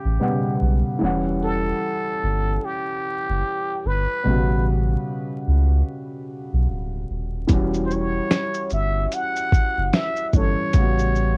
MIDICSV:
0, 0, Header, 1, 5, 480
1, 0, Start_track
1, 0, Tempo, 810811
1, 598, Time_signature, 4, 2, 24, 8
1, 6731, End_track
2, 0, Start_track
2, 0, Title_t, "Muted trumpet"
2, 0, Program_c, 0, 59
2, 0, Note_on_c, 0, 67, 87
2, 362, Note_off_c, 0, 67, 0
2, 847, Note_on_c, 0, 69, 93
2, 1568, Note_on_c, 0, 67, 94
2, 1577, Note_off_c, 0, 69, 0
2, 2290, Note_on_c, 0, 71, 99
2, 2298, Note_off_c, 0, 67, 0
2, 2764, Note_off_c, 0, 71, 0
2, 4654, Note_on_c, 0, 72, 69
2, 4693, Note_on_c, 0, 73, 96
2, 4701, Note_off_c, 0, 72, 0
2, 5165, Note_off_c, 0, 73, 0
2, 5171, Note_on_c, 0, 76, 89
2, 5410, Note_on_c, 0, 78, 105
2, 5419, Note_off_c, 0, 76, 0
2, 5889, Note_on_c, 0, 76, 103
2, 5898, Note_off_c, 0, 78, 0
2, 6129, Note_on_c, 0, 73, 99
2, 6138, Note_off_c, 0, 76, 0
2, 6731, Note_off_c, 0, 73, 0
2, 6731, End_track
3, 0, Start_track
3, 0, Title_t, "Felt piano"
3, 0, Program_c, 1, 0
3, 0, Control_c, 1, 64, 127
3, 0, Note_on_c, 1, 49, 67
3, 0, Note_on_c, 1, 55, 65
3, 0, Note_on_c, 1, 59, 55
3, 0, Note_on_c, 1, 78, 81
3, 96, Note_off_c, 1, 55, 0
3, 102, Note_off_c, 1, 59, 0
3, 108, Note_off_c, 1, 78, 0
3, 109, Note_off_c, 1, 49, 0
3, 115, Note_on_c, 1, 47, 48
3, 122, Note_on_c, 1, 55, 61
3, 127, Note_on_c, 1, 59, 55
3, 133, Note_on_c, 1, 78, 62
3, 155, Note_on_c, 1, 49, 58
3, 163, Note_off_c, 1, 47, 0
3, 586, Note_on_c, 1, 52, 79
3, 590, Note_off_c, 1, 55, 0
3, 599, Note_on_c, 1, 55, 71
3, 602, Note_off_c, 1, 59, 0
3, 605, Note_off_c, 1, 78, 0
3, 605, Control_c, 1, 64, 0
3, 610, Note_on_c, 1, 61, 67
3, 616, Note_off_c, 1, 49, 0
3, 622, Note_on_c, 1, 78, 86
3, 702, Control_c, 1, 64, 127
3, 2488, Note_off_c, 1, 52, 0
3, 2494, Note_off_c, 1, 55, 0
3, 2500, Note_off_c, 1, 61, 0
3, 2506, Note_off_c, 1, 78, 0
3, 2507, Note_on_c, 1, 47, 53
3, 2518, Note_on_c, 1, 55, 53
3, 2524, Control_c, 1, 64, 0
3, 2530, Note_on_c, 1, 59, 59
3, 2542, Note_on_c, 1, 66, 71
3, 2545, Note_on_c, 1, 49, 65
3, 2559, Note_off_c, 1, 47, 0
3, 2615, Control_c, 1, 64, 127
3, 4414, Note_off_c, 1, 55, 0
3, 4420, Note_off_c, 1, 59, 0
3, 4425, Note_on_c, 1, 52, 74
3, 4426, Note_off_c, 1, 66, 0
3, 4428, Note_off_c, 1, 49, 0
3, 4437, Note_on_c, 1, 55, 73
3, 4444, Control_c, 1, 64, 0
3, 4450, Note_on_c, 1, 61, 65
3, 4462, Note_on_c, 1, 66, 76
3, 4552, Control_c, 1, 64, 127
3, 6088, Note_off_c, 1, 52, 0
3, 6094, Note_off_c, 1, 55, 0
3, 6100, Note_off_c, 1, 61, 0
3, 6106, Note_off_c, 1, 66, 0
3, 6121, Note_on_c, 1, 52, 45
3, 6126, Note_on_c, 1, 55, 42
3, 6133, Note_on_c, 1, 61, 46
3, 6138, Note_on_c, 1, 69, 57
3, 6354, Note_on_c, 1, 49, 59
3, 6357, Note_off_c, 1, 55, 0
3, 6359, Note_off_c, 1, 52, 0
3, 6365, Note_off_c, 1, 61, 0
3, 6365, Control_c, 1, 64, 0
3, 6366, Note_on_c, 1, 55, 63
3, 6368, Note_off_c, 1, 69, 0
3, 6378, Note_on_c, 1, 59, 58
3, 6389, Note_on_c, 1, 66, 72
3, 6465, Control_c, 1, 64, 127
3, 6731, Note_off_c, 1, 49, 0
3, 6731, Note_off_c, 1, 55, 0
3, 6731, Note_off_c, 1, 59, 0
3, 6731, Note_off_c, 1, 66, 0
3, 6731, End_track
4, 0, Start_track
4, 0, Title_t, "Sub bass"
4, 0, Program_c, 2, 38
4, 26, Note_on_c, 2, 33, 90
4, 107, Note_off_c, 2, 33, 0
4, 362, Note_on_c, 2, 35, 88
4, 487, Note_off_c, 2, 35, 0
4, 602, Note_on_c, 2, 28, 97
4, 1018, Note_off_c, 2, 28, 0
4, 1319, Note_on_c, 2, 31, 97
4, 1527, Note_off_c, 2, 31, 0
4, 1946, Note_on_c, 2, 30, 90
4, 2027, Note_off_c, 2, 30, 0
4, 2278, Note_on_c, 2, 31, 79
4, 2405, Note_off_c, 2, 31, 0
4, 2518, Note_on_c, 2, 33, 96
4, 2936, Note_off_c, 2, 33, 0
4, 3239, Note_on_c, 2, 37, 95
4, 3447, Note_off_c, 2, 37, 0
4, 3865, Note_on_c, 2, 35, 83
4, 3946, Note_off_c, 2, 35, 0
4, 3960, Note_on_c, 2, 26, 89
4, 4168, Note_off_c, 2, 26, 0
4, 4200, Note_on_c, 2, 27, 91
4, 4408, Note_off_c, 2, 27, 0
4, 4438, Note_on_c, 2, 28, 98
4, 4855, Note_off_c, 2, 28, 0
4, 5159, Note_on_c, 2, 31, 101
4, 5368, Note_off_c, 2, 31, 0
4, 5785, Note_on_c, 2, 30, 93
4, 5866, Note_off_c, 2, 30, 0
4, 6117, Note_on_c, 2, 31, 81
4, 6245, Note_off_c, 2, 31, 0
4, 6359, Note_on_c, 2, 33, 94
4, 6731, Note_off_c, 2, 33, 0
4, 6731, End_track
5, 0, Start_track
5, 0, Title_t, "Drums"
5, 4433, Note_on_c, 9, 42, 62
5, 4433, Note_on_c, 9, 82, 66
5, 4437, Note_on_c, 9, 36, 97
5, 4492, Note_off_c, 9, 42, 0
5, 4492, Note_off_c, 9, 82, 0
5, 4496, Note_off_c, 9, 36, 0
5, 4583, Note_on_c, 9, 82, 43
5, 4642, Note_off_c, 9, 82, 0
5, 4682, Note_on_c, 9, 82, 49
5, 4742, Note_off_c, 9, 82, 0
5, 4920, Note_on_c, 9, 38, 105
5, 4922, Note_on_c, 9, 42, 57
5, 4922, Note_on_c, 9, 82, 66
5, 4979, Note_off_c, 9, 38, 0
5, 4981, Note_off_c, 9, 42, 0
5, 4981, Note_off_c, 9, 82, 0
5, 5057, Note_on_c, 9, 82, 48
5, 5117, Note_off_c, 9, 82, 0
5, 5150, Note_on_c, 9, 82, 42
5, 5210, Note_off_c, 9, 82, 0
5, 5398, Note_on_c, 9, 42, 61
5, 5398, Note_on_c, 9, 82, 59
5, 5457, Note_off_c, 9, 42, 0
5, 5457, Note_off_c, 9, 82, 0
5, 5542, Note_on_c, 9, 82, 46
5, 5601, Note_off_c, 9, 82, 0
5, 5638, Note_on_c, 9, 36, 95
5, 5646, Note_on_c, 9, 82, 43
5, 5697, Note_off_c, 9, 36, 0
5, 5705, Note_off_c, 9, 82, 0
5, 5879, Note_on_c, 9, 42, 68
5, 5879, Note_on_c, 9, 82, 72
5, 5882, Note_on_c, 9, 38, 105
5, 5939, Note_off_c, 9, 42, 0
5, 5939, Note_off_c, 9, 82, 0
5, 5941, Note_off_c, 9, 38, 0
5, 6016, Note_on_c, 9, 82, 44
5, 6075, Note_off_c, 9, 82, 0
5, 6115, Note_on_c, 9, 82, 39
5, 6116, Note_on_c, 9, 36, 89
5, 6175, Note_off_c, 9, 36, 0
5, 6175, Note_off_c, 9, 82, 0
5, 6354, Note_on_c, 9, 42, 66
5, 6354, Note_on_c, 9, 82, 60
5, 6358, Note_on_c, 9, 36, 102
5, 6413, Note_off_c, 9, 42, 0
5, 6413, Note_off_c, 9, 82, 0
5, 6417, Note_off_c, 9, 36, 0
5, 6505, Note_on_c, 9, 82, 43
5, 6564, Note_off_c, 9, 82, 0
5, 6604, Note_on_c, 9, 82, 45
5, 6663, Note_off_c, 9, 82, 0
5, 6731, End_track
0, 0, End_of_file